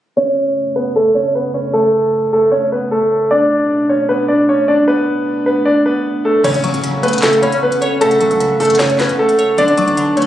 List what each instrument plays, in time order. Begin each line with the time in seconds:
0.17 analog synth pad F#2 C#3 A3, grand piano C#4 C#5
0.76 grand piano B3 B4
0.96 grand piano A3 A4
1.15 grand piano C#4 C#5
1.35 grand piano B3 B4
1.54 grand piano C#4 C#5
1.73 grand piano A3 A4
2.33 grand piano A3 A4
2.52 grand piano C#4 C#5
2.72 grand piano B3 B4
2.91 grand piano A3 A4
3.31 analog synth pad B2 D4, grand piano D4 D5
3.89 grand piano C#4 C#5
4.09 grand piano B3 B4
4.28 grand piano D4 D5
4.49 grand piano C#4 C#5
4.68 grand piano D4 D5
4.88 grand piano B3 B4
5.46 grand piano B3 B4
5.65 grand piano D4 D5
5.86 grand piano B3 B4
6.25 grand piano A3 A4
6.44 808-style bass F#1, synth pluck C#3, analog synth pad C#4 A4 F#5, grand piano C#4 C#5, closed hi-hat, crash, impact
6.54 closed hi-hat
6.64 808-style bass F#1, synth pluck F#3, synth bell C#6, closed hi-hat
6.74 808-style bass F#1, closed hi-hat
6.84 synth pluck C#3, closed hi-hat
7.03 synth pluck A3, grand piano B3 B4, closed hi-hat
7.08 closed hi-hat
7.13 closed hi-hat
7.18 closed hi-hat
7.22 synth pluck C#3, grand piano A3 A4, snare, clap, closed hi-hat
7.33 closed hi-hat
7.42 808-style bass F#1, synth pluck C#4, grand piano C#4 C#5, synth bell B5, closed hi-hat
7.52 closed hi-hat
7.63 grand piano B3 B4
7.72 closed hi-hat
7.82 grand piano C#4 C#5, synth pluck C#5, closed hi-hat
8.01 808-style bass C#3, synth pluck C#3, grand piano A3 A4, synth bell A5, closed hi-hat
8.11 closed hi-hat
8.21 808-style bass F#1, synth pluck F#3, closed hi-hat
8.31 808-style bass C#2, closed hi-hat
8.40 synth pluck C#3, closed hi-hat
8.50 808-style bass A1
8.60 808-style bass F#2, synth pluck A3, grand piano A3 A4, closed hi-hat, open hi-hat
8.65 closed hi-hat
8.70 closed hi-hat
8.75 closed hi-hat
8.79 synth pluck C#3, grand piano C#4 C#5, snare, clap, closed hi-hat
8.90 closed hi-hat
8.99 grand piano B3 B4, synth pluck C#4, snare, clap, closed hi-hat
9.09 808-style bass F#1, closed hi-hat
9.19 grand piano A3 A4
9.29 closed hi-hat
9.39 synth pluck C#5, closed hi-hat
9.58 808-style bass B1, synth pluck D3, analog synth pad D4 B4 A5, grand piano D4 D5, closed hi-hat
9.68 closed hi-hat
9.78 808-style bass B1, synth pluck F#3, synth bell C#6, closed hi-hat
9.88 808-style bass B1, closed hi-hat
9.97 synth pluck D3, closed hi-hat
10.17 synth pluck A3, grand piano C#4 C#5, closed hi-hat
10.22 closed hi-hat